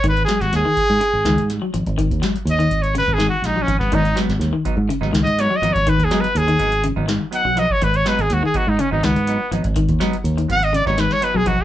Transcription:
<<
  \new Staff \with { instrumentName = "Trumpet" } { \time 4/4 \key gis \dorian \tempo 4 = 123 \tuplet 3/2 { b'8 gis'8 fis'8 } gis'2 r4 | r4 \tuplet 3/2 { dis''4 cis''8 b'8 gis'8 fis'8 dis'8 cis'8 b8 } | dis'8 r4. \tuplet 3/2 { r4 dis''8 cis''8 dis''8 cis''8 } | \tuplet 3/2 { b'8 gis'8 b'8 } gis'4 r4 fis''8 dis''16 cis''16 |
b'16 cis''16 b'16 gis'16 fis'16 gis'16 fis'16 dis'16 cis'16 dis'16 b4 r8 | r4. fis''16 dis''16 d''16 cis''16 b'16 cis''16 b'16 gis'16 fis'16 r16 | }
  \new Staff \with { instrumentName = "Clean electric guitar" } { \time 4/4 \key gis \dorian r1 | r1 | <fis b dis'>16 r16 <fis b>16 r8. <fis b dis'>16 r8 <fis b dis'>16 r8 <fis b dis'>16 r16 <fis b dis'>16 r16 | r8 <fis b dis'>16 r8. <fis b dis'>16 r8 <fis b dis'>16 r8 <fis b dis'>16 r16 <fis b dis'>16 r16 |
r8 <fis b dis'>16 r8. <fis b dis'>16 r8 <fis b dis'>16 r8 <fis b dis'>16 r16 <fis b dis'>16 r16 | r8 <fis b dis'>16 r8. <fis b>16 r8 <fis b dis'>16 r8 <fis b dis'>16 r16 <fis b dis'>16 r16 | }
  \new Staff \with { instrumentName = "Clean electric guitar" } { \clef bass \time 4/4 \key gis \dorian dis8 fis8 r16 dis8 r8. dis8 r16 fis16 eis8 | dis8 fis8 r16 dis8 r16 cis8 dis8 r16 fis16 eis8 | dis8 fis8 r16 dis8 r16 cis8 dis8 r16 fis16 eis8 | dis8 fis8 r16 dis8 r16 cis8 dis8 r16 fis16 eis8 |
r4 r16 dis8 r16 cis8 dis8 r8 eis8 | dis8 fis8 r16 dis8 r16 cis8 dis8 r16 fis16 eis8 | }
  \new Staff \with { instrumentName = "Fingered electric bass" } { \clef bass \time 4/4 \key gis \dorian gis,,8 r16 gis,,16 dis,16 r8 gis,16 r16 gis,,16 cis,16 gis,8 r16 gis,,16 gis,,16~ | gis,,16 dis,16 r8 dis,8 gis,,8. gis,,8 r16 ais,,8 gis,,8 | gis,,8 r16 gis,,16 dis,16 r8 gis,16 r16 gis,,16 cis,16 gis,8 r16 gis,,16 gis,,16~ | gis,,16 dis,16 r8 dis,8 gis,,8. gis,,8 r8 b,,8 r16 |
gis,,8 r16 gis,,16 dis,16 r8 gis,16 r16 gis,,16 cis,16 gis,8 r16 gis,,16 gis,,16~ | gis,,16 dis,16 r8 dis,8 gis,,8. gis,,8 r8 b,,8 r16 | }
  \new DrumStaff \with { instrumentName = "Drums" } \drummode { \time 4/4 <hh bd>16 hh16 <hh sn>16 <hh sn>16 <hh sn>8 <hh bd>16 sn16 hh8 <hh sn>16 hh16 <hh sn>8 hh16 <hh bd>16 | <hh bd>16 <hh bd>16 <hh sn>16 hh16 hh16 hh16 <hh bd>16 hh16 hh16 bd16 <hh sn>8 <hh sn>8 <hh bd>16 <bd sn>16 | <hh bd>16 hh16 <hh sn>16 <hh sn>16 <hh sn>8 <hh bd>8 hh16 sn16 <hh sn>16 hh16 <hh sn>8 hh16 <hh bd>16 | <hh bd>16 hh16 <hh sn>16 hh16 hh16 hh16 <hh bd>16 hh16 hh8 <hh sn>8 hh8 hh16 bd16 |
<hh bd>16 hh16 <hh sn>16 hh16 <hh sn>8 <hh bd>8 hh8 <hh sn>16 hh16 hh8 hh16 <hh bd>16 | <hh bd>16 <hh bd>16 <hh sn>16 hh16 hh16 hh16 <hh bd>16 hh16 hh16 <bd sn>16 <hh sn>16 sn16 hh8 <hh bd>16 bd16 | }
>>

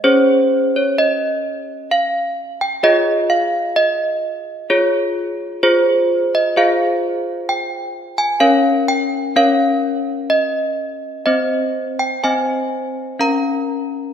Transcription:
\new Staff \with { instrumentName = "Handbells" } { \time 3/4 \key des \lydian \tempo 4 = 64 << { c''8. des''16 ees''4 f''8. g''16 | ees''8 f''8 ees''4 des''4 | \key bes \dorian c''8. ees''16 f''4 g''8. aes''16 | f''8 g''8 f''4 ees''4 |
ees''8. g''16 aes''4 bes''4 | } \\ { <des' aes' des''>2. | <f' aes' des''>2 <f' aes'>4 | <f' aes'>4 <f' aes' c''>2 | <des' bes' des''>4 <des' bes' des''>2 |
<c' c''>4 <c' c'' ees''>4 <des' bes' f''>4 | } >> }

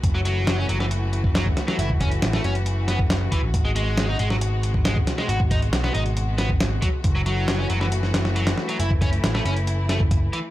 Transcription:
<<
  \new Staff \with { instrumentName = "String section" } { \time 4/4 \key fis \dorian \tempo 4 = 137 << { fis'1~ | fis'1~ | fis'1~ | fis'1 |
fis'1 | e'1 | } \\ { <e a>1~ | <e a>1 | <b, gis>1~ | <b, gis>1 |
<e a>1~ | <e a>1 | } >> }
  \new Staff \with { instrumentName = "Overdriven electric guitar" } { \clef bass \time 4/4 \key fis \dorian r16 fis16 fis8. cis'16 fis16 e16 r4 fis16 r8 fis16 | e'16 r16 cis'16 r8 a16 cis'16 r8. b16 r8. e16 r16 | r16 gis16 gis8. dis'16 gis16 fis16 r4 gis16 r8 gis16 | fis'16 r16 dis'16 r8 b16 dis'16 r8. b16 r8. fis16 r16 |
r16 fis16 fis8. cis'16 fis16 e16 r4 fis16 r8 fis16 | e'16 r16 cis'16 r8 a16 cis'16 r8. a16 r8. e16 r16 | }
  \new Staff \with { instrumentName = "Picked electric bass" } { \clef bass \time 4/4 \key fis \dorian fis,,4~ fis,,16 r16 fis,,4.~ fis,,16 r8. | fis,,8. r16 a,,16 r16 fis,,4.~ fis,,16 r8 a,,16 | gis,,4~ gis,,16 r16 gis,,4.~ gis,,16 r8. | gis,,8. r16 b,,16 r16 gis,,4.~ gis,,16 r8. |
fis,,4~ fis,,16 r16 fis,,4.~ fis,,16 r8. | fis,,8. r16 a,,16 r16 fis,,4.~ fis,,16 r8. | }
  \new DrumStaff \with { instrumentName = "Drums" } \drummode { \time 4/4 <hh bd>8 hh8 <hh sn>8 hh16 sn16 hh8 hh16 bd16 <hh sn>16 bd16 <hh sn>16 sn16 | hh16 bd16 <hh bd>16 hh16 <hh sn>16 sn16 hh16 hh16 hh8 <hh sn>16 bd16 <hh sn>8 <hh bd>8 | <hh bd>8 hh8 <hh sn>8 hh16 sn16 hh8 hh16 bd16 <hh sn>16 bd16 <hh sn>16 sn16 | hh16 bd16 <hh bd>16 hh16 <hh sn>16 sn16 hh16 hh16 hh8 <hh sn>16 bd16 <hh sn>8 <hh bd>8 |
<hh bd>8 hh8 <hh sn>8 hh16 sn16 hh16 sn16 <hh sn>16 sn16 hh16 <hh sn>16 sn16 hh16 | hh16 bd16 <hh bd>16 hh16 <hh sn>16 sn16 hh16 hh16 hh8 <hh sn>16 bd16 <hh bd>8 hh8 | }
>>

